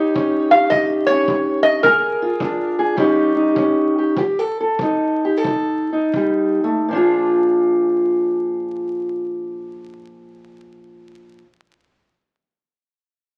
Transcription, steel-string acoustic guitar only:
0.00 0.12 D#3 medium
0.00 1.83 D#4 medium
0.00 0.51 G4 medium
0.14 0.68 G3 medium
0.14 1.09 C#4 soft
0.52 1.84 G4 medium
0.71 1.24 A#2 medium
1.10 1.83 C#4 medium
1.28 1.81 G3 medium
1.84 2.37 A#2 medium
1.84 2.78 G#4 medium
2.22 2.96 F4 medium
2.40 2.94 F3 medium
2.40 2.96 D4 medium
2.79 2.96 G#4 medium
2.97 3.52 D#3 medium
2.97 3.55 G3 medium
2.97 3.56 C#4 medium
2.97 3.34 D#4 medium
2.97 3.97 G4 medium
3.35 4.14 D#4 medium
3.56 4.12 G3 medium
3.56 4.15 C#4 medium
3.98 4.17 G4 medium
4.18 4.76 F3 medium
4.18 4.39 G4 medium
4.39 4.59 A4 medium
4.61 5.24 A4 medium
4.81 5.41 C4 medium
4.81 5.91 D#4 medium
5.25 5.37 G4 medium
5.37 6.89 A4 medium
5.47 6.10 C3 medium
5.93 6.85 D#4 medium
6.16 6.63 G3 medium
6.64 6.88 A3 medium
6.88 11.41 A#2 medium
6.88 11.43 F3 medium
6.93 11.44 D4 medium
6.93 11.45 F4 medium
6.93 11.45 G#4 medium

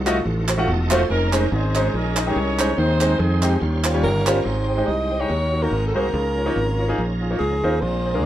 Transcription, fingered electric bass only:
0.00 0.19 C2 loud
0.25 0.69 A1 loud
0.68 1.03 E1 loud
1.10 1.45 F1 loud
1.52 1.87 G#1 loud
1.94 2.29 A#1 medium
2.36 2.72 C2 loud
2.78 3.13 D#2 loud
3.19 3.55 F2 loud
3.62 4.05 D#2 medium
4.03 4.39 G1 loud
4.45 4.81 G#1 medium
4.88 5.23 C2 medium
5.30 5.65 D#2 medium
5.71 5.92 G#1 loud
5.95 6.11 C2 medium
6.13 6.49 C#2 medium
6.56 6.92 G#1 medium
6.98 7.34 A#1 medium
7.40 7.60 C#2 medium
7.64 7.79 D#2 medium
7.82 8.24 A#1 medium

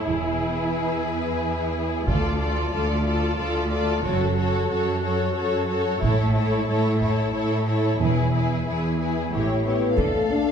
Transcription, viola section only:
0.00 2.06 E4 soft
2.06 2.38 F4 soft
2.39 2.70 F4 soft
2.71 3.03 F4 soft
3.05 3.36 F4 soft
3.37 3.69 F4 soft
3.70 4.03 F4 soft
4.04 4.36 F#4 soft
4.37 4.69 F#4 soft
4.70 5.01 F#4 soft
5.02 5.34 F#4 soft
5.35 5.67 F#4 soft
5.69 6.01 F#4 soft
6.02 6.33 E4 soft
6.34 6.66 E4 soft
6.68 7.00 E4 soft
7.01 7.32 E4 soft
7.33 7.66 E4 soft
7.67 7.98 E4 soft
7.99 8.31 E4 soft
8.32 8.64 E4 soft
8.65 8.97 E4 soft
8.98 9.31 E4 soft
9.32 9.64 E4 soft
9.65 9.97 E4 soft
9.97 10.28 A4 soft

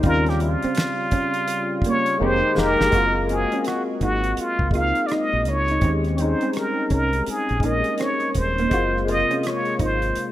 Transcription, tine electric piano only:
0.01 1.39 G3 medium
0.01 1.39 C4 medium
0.01 1.40 C#4 medium
0.06 1.41 F4 medium
2.18 2.53 G#3 medium
2.18 2.54 A#3 medium
2.18 2.55 D#4 medium
2.23 2.56 G4 loud
2.54 2.89 G#3 medium
2.54 2.90 A#3 medium
2.54 2.91 D#4 medium
2.59 2.92 G4 medium
2.91 3.26 G#3 medium
2.91 3.27 A#3 medium
2.91 3.27 C4 medium
2.96 3.28 F4 medium
3.27 4.64 G#3 medium
3.27 4.65 A#3 medium
3.27 4.66 C4 medium
3.32 4.66 F#4 medium
4.71 5.74 G#3 medium
4.71 5.75 A#3 medium
4.71 5.76 C4 medium
4.76 5.77 D#4 medium
5.80 6.15 G#3 medium
5.80 6.16 C4 medium
5.80 6.17 C#4 medium
5.85 6.17 G4 medium
6.17 6.26 G3 medium
6.17 7.54 C4 medium
6.17 7.55 C#4 medium
6.22 7.57 G#3 medium
6.22 7.56 D#4 medium
7.61 8.64 G#3 medium
7.61 8.65 A#3 medium
7.61 8.66 C#4 medium
7.66 8.66 A#4 medium
8.69 9.04 G#3 medium
8.69 9.05 A#3 medium
8.69 9.06 C4 medium
8.74 9.07 F4 medium
9.05 10.32 C3 medium
9.05 10.32 G#3 medium
9.05 10.32 A#3 medium
9.09 10.32 F4 medium

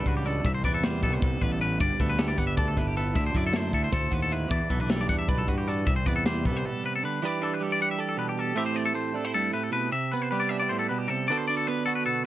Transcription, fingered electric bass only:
0.06 0.41 C#2 medium
0.45 0.63 C2 loud
0.64 1.04 E2 medium
1.03 1.21 C2 medium
1.22 1.40 C2 medium
1.41 1.77 A1 medium
1.80 1.89 G1 medium
2.00 2.35 D2 medium
2.38 2.56 G1 medium
2.58 2.75 D2 medium
2.77 3.12 G1 medium
3.15 3.33 D2 medium
3.34 3.73 F#2 medium
3.73 3.91 D2 medium
3.92 4.10 D2 medium
4.12 4.47 D#2 medium
4.50 4.60 E2 medium
4.71 5.06 B1 medium
5.09 5.27 E2 medium
5.28 5.46 B1 medium
5.49 5.84 G2 medium
5.87 6.04 C2 medium
6.06 6.47 E2 medium
6.45 6.63 C2 medium

